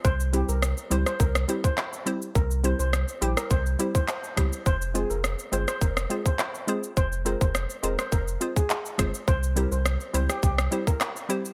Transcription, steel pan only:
\new Staff \with { instrumentName = "Steel pan" } { \time 4/4 \key f \minor \tempo 4 = 104 c''16 r16 g'16 bes'16 r8 c''16 c''16 bes'16 r8 c''16 r4 | bes'16 r16 c''16 c''16 r8 g'16 bes'16 c''16 r8 c''16 c''8. r16 | c''16 r16 aes'16 bes'16 r8 c''16 c''16 bes'16 r8 c''16 r4 | c''16 r16 bes'16 c''16 r8 bes'16 c''16 bes'16 r8 aes'16 r4 |
c''16 r16 bes'16 c''16 r8 c''16 g'16 g'16 r8 bes'16 r4 | }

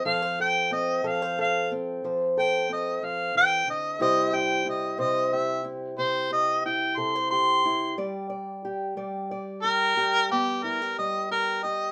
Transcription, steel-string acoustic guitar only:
\new Staff \with { instrumentName = "Steel-string acoustic guitar" } { \time 12/8 \key c \major \tempo 4. = 60 << { <c' a'>16 c''16 a'8 c'8 a'16 c''16 a'8 c'8 c''8 a'8 c'2 | <g e' g' c''>8 g'8 e'8 c''8 g'8 e'8 g'8 g'8 e'8 a'16 c''16 g'8 e'8 | d''8 d''8 g'8 d''8 d''8 g'8 g'8 b8 e'16 g'8. g'8 g'8 | } \\ { f4. f4. f4. f8 e8 d8 | c4. c4. c4. c4. | g4. g4. g4. g4. | } >> }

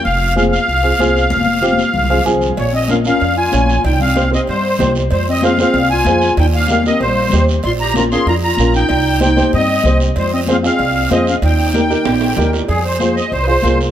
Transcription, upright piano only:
\new Staff \with { instrumentName = "Upright piano" } { \time 4/4 \key f \minor \tempo 4 = 190 << { r1 | r2 r8 f''8 aes''4 | r1 | r1 |
r1 | r1 | r1 | r1 |
r1 | r1 | r1 | } \\ { r4 <c' f' aes'>8 r4 <c' f' aes'>8 <c' f' aes'>8 r8 | r4 <c' f' g'>8 r4 <c' f' aes'>8 <c' f' aes'>8 r8 | r4 <des' f' bes'>8 <des' f' bes'>8 r4 <des' f' des''>8 r8 | r4 <ees' g' c''>8 <ees' g' c''>8 r4 <ees' g' c''>8 r8 |
r4 <f' aes' c''>8 <f' aes' c''>8 r4 <f' aes' c''>8 r8 | r4 <ees' g' bes'>8 <ees' g' bes'>8 r4 <ees' g' c''>8 r8 | r4 <des' f' bes'>8 <des' f' bes'>8 r4 <des' f' bes'>8 r8 | r4 <ees' g' c''>8 <ees' g' c''>8 r4 <ees' g' c''>8 r8 |
r4 <f' aes' c''>8 <f' aes' ees''>8 r4 <f' aes' c''>8 r8 | r4 <ees' g' bes'>8 <ees' g' bes'>8 r4 <ees' g' bes'>8 r8 | r4 <f' aes' c''>8 r4 <f' aes' c''>8 <f' aes' bes'>8 r8 | } >> }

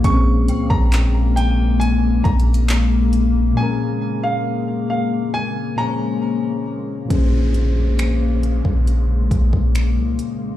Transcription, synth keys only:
\new Staff \with { instrumentName = "Synth keys" } { \time 4/4 \key bes \dorian \tempo 4 = 68 <bes, f c' des' aes'>1 | <bes, f des' aes' bes'>2~ <bes, f des' aes' bes'>8 <bes, f des' aes' c'' des''>4. | <bes, f des' aes' c''>1 | }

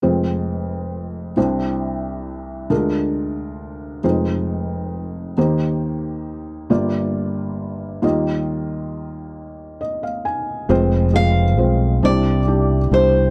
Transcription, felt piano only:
<<
  \new Staff \with { instrumentName = "Felt piano" } { \time 6/8 \key f \dorian \tempo 4. = 45 << { r2. | r2. | r2. | r2 ees''16 f''16 aes''8 |
r2. | } \\ { <aes c' f' c''>4. <g d' e' c''>4. | <aes d' f' bes'>4. <aes ees' f' c''>4. | <bes ees' g' c''>4. <bes f' g' d''>4. | <g bes f' ees''>2. |
<aes c' f' c''>8 <aes c' f' c''>8 <aes c' f' c''>8 <g d' e' c''>8 <g d' e' g'>8 <g d' e' c''>8 | } >> }
  \new Staff \with { instrumentName = "Felt piano" } { \clef bass \time 6/8 \key f \dorian <f,, f,>4. <c, c>4. | <d, d>4. <f,, f,>4. | <ees, ees>4. <g,, g,>4. | <ees, ees>2. |
<f,, f,>4. <c, c>4. | }
>>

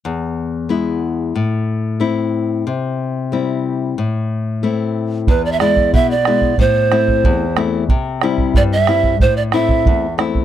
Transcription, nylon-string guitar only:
\new Staff \with { instrumentName = "Nylon-string guitar" } { \time 2/4 \key a \minor \tempo 4 = 92 e,4 <gis b e'>4 | a,4 <a c' e'>4 | c4 <g c' e'>4 | a,4 <a c' e'>4 |
e,8 <gis b e'>8 b,8 <gis b e'>8 | a,8 <a c' e'>8 e,8 <a c' e'>8 | c8 <g c' e'>8 g,8 <g c' e'>8 | a,8 <a c' e'>8 e,8 <a c' e'>8 | }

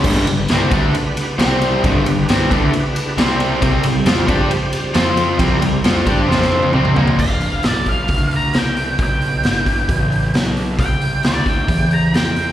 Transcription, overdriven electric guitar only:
\new Staff \with { instrumentName = "Overdriven electric guitar" } { \clef bass \time 4/4 \key g \mixolydian \tempo 4 = 134 <g, d g>8 <g, d>8 <c g c'>8 <d a d'>8 r4 <c g c'>4 | <g, d g>8 <g, d>8 <c g c'>8 <d a d'>8 r4 <c g c'>4 | <c g c'>8 <c g>8 <f c' f'>8 <g d' g'>8 r4 <f c' f'>4 | <c g c'>8 <c g>8 <f c' f'>8 <g d' g'>8 <f c' f'>4 <c g c'>8 <bes, f bes>8 |
r1 | r1 | r1 | }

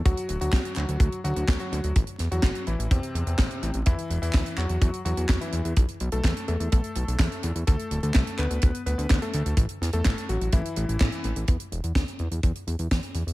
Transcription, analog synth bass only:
\new Staff \with { instrumentName = "Analog synth bass" } { \clef bass \time 4/4 \key d \mixolydian \tempo 4 = 126 d,16 r16 d,,16 d,16 c,16 r16 d,16 d,16 d,16 r16 d,16 d,16 d,16 r16 d,16 d,16 | a,,16 r16 e,16 e,16 a,,16 r16 a,,16 a,,16 e,16 r16 e,16 e,16 a,,16 r16 a,,16 a,,16 | e,16 r16 e,,16 e,16 d,16 r16 e,16 e,16 e,16 r16 e,16 e,16 e,16 r16 e,16 e,16 | b,,16 r16 b,,16 b,,16 e,16 r16 e,16 e,16 b,,16 r16 b,,16 b,,16 e,16 r16 e,16 e,16 |
d,16 r16 d,,16 d,16 c,16 r16 d,16 d,16 d,16 r16 d,16 d,16 d,16 r16 d,16 d,16 | a,,16 r16 e,16 e,16 a,,16 r16 a,,16 a,,16 a,,16 r16 a,,16 a,,16 a,,16 r16 a,,16 a,,16 | e,16 r16 e,,16 e,16 d,16 r16 e,16 e,16 e,16 r16 e,16 e,16 e,16 r16 e,16 e,16 | }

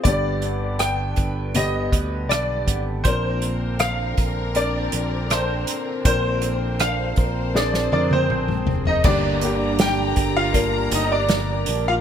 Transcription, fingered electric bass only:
\new Staff \with { instrumentName = "Fingered electric bass" } { \clef bass \time 4/4 \key g \phrygian \tempo 4 = 80 g,,4. g,,4 d,8 b,,8 aes,,8 | bes,,4. bes,,4 bes,,4 r8 | bes,,4. bes,,4 f,8 bes,,8 f,,8 | g,,4. g,,4 g,,4 bes,,8 | }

